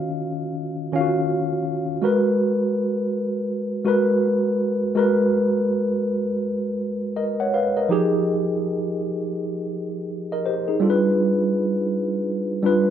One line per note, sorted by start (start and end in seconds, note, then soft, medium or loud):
0.00 0.29 D#3 medium
0.00 0.93 C#4 medium
0.00 0.94 F4 soft
0.00 1.01 F#4 medium
0.00 2.04 D#5 medium
0.00 0.30 F5 medium
0.92 1.84 D#3 medium
0.92 1.85 C#4 medium
0.92 1.02 F4 soft
0.92 1.86 F5 medium
1.01 1.89 F#4 medium
2.02 3.21 G#3 medium
2.02 3.22 F#4 medium
2.02 3.22 A#4 medium
2.02 3.23 B4 medium
3.85 4.77 G#3 medium
3.85 4.77 F#4 medium
3.85 4.78 A#4 medium
3.85 4.79 B4 medium
4.95 6.14 G#3 medium
4.95 6.15 F#4 medium
4.95 6.15 A#4 medium
4.95 6.16 B4 medium
7.17 7.38 A#4 soft
7.17 7.38 D#5 medium
7.40 7.52 C#5 medium
7.40 7.52 F#5 medium
7.54 7.75 B4 medium
7.54 7.75 F5 medium
7.77 8.10 A#4 soft
7.77 8.10 D#5 soft
7.89 9.08 F3 medium
7.89 9.08 D#4 medium
7.89 9.09 G4 medium
7.89 9.09 G#4 medium
10.32 10.45 A#4 soft
10.32 10.44 D#5 medium
10.46 10.67 G4 soft
10.46 10.67 C5 medium
10.68 11.03 D#4 medium
10.68 11.02 G#4 medium
10.80 11.99 G3 medium
10.80 12.00 D4 medium
10.80 12.00 F4 medium
10.80 10.90 A4 medium
10.90 12.04 B4 medium
12.63 12.90 G3 medium
12.63 12.90 D4 medium
12.63 12.90 F4 medium
12.63 12.90 B4 medium